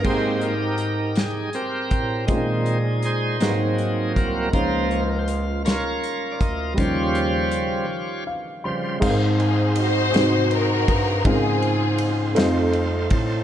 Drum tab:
CC |x-----|------|------|------|
RD |------|------|------|------|
HH |-xxxxx|xxxxxx|xxxxxx|xxx---|
SD |---o--|---o--|---o--|------|
BD |o----o|o----o|o----o|o-----|

CC |x-----|------|
RD |-xxxxx|xxxxxx|
HH |------|------|
SD |---o--|---o--|
BD |o----o|o----o|